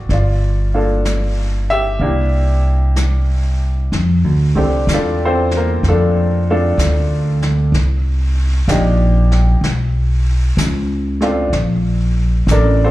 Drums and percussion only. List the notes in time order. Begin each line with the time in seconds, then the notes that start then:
0.10 brush sweep, snare
1.05 brush sweep, snare, hi-hat pedal
2.01 brush sweep
2.96 brush sweep, snare, hi-hat pedal
3.93 brush sweep, snare
4.88 snare, hi-hat pedal
5.51 snare
5.84 brush sweep, snare
6.79 snare, hi-hat pedal
7.42 snare
7.74 brush sweep, snare
8.69 snare, hi-hat pedal
9.32 snare
9.64 brush sweep, snare
10.58 snare, hi-hat pedal
11.21 snare
11.53 brush sweep, snare
12.48 snare, hi-hat pedal